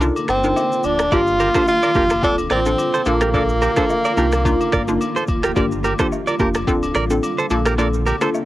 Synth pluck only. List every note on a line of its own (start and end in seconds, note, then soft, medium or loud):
0.00 0.40 D4 medium
0.00 0.40 D#4 medium
0.00 0.40 F4 medium
0.00 0.40 A#4 loud
0.44 0.64 D4 medium
0.44 0.64 D#4 medium
0.44 0.64 F4 medium
0.44 0.64 A#4 medium
1.12 1.51 A#3 medium
1.12 1.51 D4 medium
1.12 1.51 F4 medium
1.12 1.52 G4 loud
1.55 1.92 A#3 medium
1.55 1.92 D4 medium
1.55 1.92 F4 medium
1.55 1.92 G4 medium
1.95 2.21 A#3 medium
1.95 2.21 D4 medium
1.95 2.21 F4 medium
1.95 2.21 G4 medium
2.23 2.62 C4 medium
2.23 2.62 D4 medium
2.23 2.62 F4 medium
2.23 2.63 A4 loud
2.66 2.86 C4 medium
2.66 2.86 D4 medium
2.66 2.86 F4 medium
2.66 2.86 A4 medium
3.06 3.32 A#3 loud
3.06 3.32 D4 medium
3.06 3.32 F4 medium
3.06 3.32 A4 loud
3.34 3.73 A#3 medium
3.34 3.73 D4 medium
3.34 3.74 F4 medium
3.34 3.74 A4 loud
3.77 4.14 A#3 medium
3.77 4.14 D4 medium
3.77 4.14 F4 medium
3.77 4.15 A4 medium
4.17 4.43 A#3 medium
4.17 4.43 D4 medium
4.17 4.43 D#4 medium
4.17 4.43 F4 medium
4.45 4.85 A#3 medium
4.45 4.85 D4 medium
4.45 4.85 D#4 medium
4.45 4.85 F4 loud
4.88 5.08 A#3 medium
4.88 5.08 D4 medium
4.88 5.09 D#4 medium
4.88 5.09 F4 medium
5.56 5.96 A#3 medium
5.56 5.96 D4 medium
5.56 5.96 F4 medium
5.56 5.96 G4 loud
5.99 6.37 A#3 medium
5.99 6.37 D4 medium
5.99 6.37 F4 medium
5.99 6.37 G4 medium
6.39 6.65 A#3 medium
6.39 6.65 D4 medium
6.39 6.66 F4 medium
6.39 6.66 G4 medium
6.67 7.07 C4 medium
6.67 7.07 D4 medium
6.67 7.07 F4 medium
6.67 7.07 A4 loud
7.10 7.31 C4 medium
7.10 7.31 D4 medium
7.10 7.31 F4 medium
7.10 7.31 A4 medium
7.50 7.76 A#3 medium
7.50 7.76 D4 medium
7.50 7.77 F4 medium
7.50 7.77 A4 loud
7.78 8.18 A#3 medium
7.78 8.18 D4 medium
7.78 8.18 F4 medium
7.78 8.18 A4 loud
8.21 8.45 A#3 medium
8.21 8.45 D4 medium
8.21 8.45 F4 medium
8.21 8.45 A4 medium